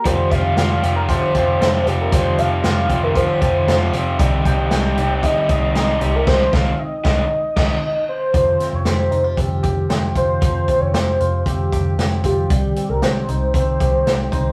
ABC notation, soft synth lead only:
X:1
M:4/4
L:1/16
Q:1/4=116
K:Fm
V:1 name="Soft synth lead"
c2 f2 f3 B c6 G B | c2 f2 f3 B c6 z2 | z2 g2 g4 e2 e4 G B | c2 f2 e2 e8 c2 |
c3 d c4 G4 z2 c2 | c3 d c4 G4 z2 G2- | G3 B c4 c6 c2 |]